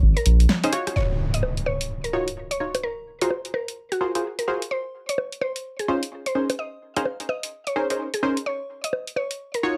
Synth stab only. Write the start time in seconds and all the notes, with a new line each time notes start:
0.64 C#4 D#4 G#4 C5
0.73 F4 F#4 C#5
2.13 D#4 F4 F#4 C#5
2.60 D#4 F4 F#4 C#5
3.22 F4 F#4 G#4 A#4 C5
4.01 F4 F#4 G#4 A#4 C5
4.15 F4 F#4 G#4 A#4 C5
4.48 F4 F#4 G#4 A#4 C5
5.88 C#4 D#4 F4 C5
6.35 C#4 D#4 G#4 A#4 C5
6.97 C#4 D#4 G#4 A#4 C5
7.76 C#4 D#4 G#4 A#4 C5
7.90 C#4 D#4 G#4 A#4 C5
8.23 C#4 D#4 G#4 A#4 C5
9.63 D#4 F4 F#4 C#5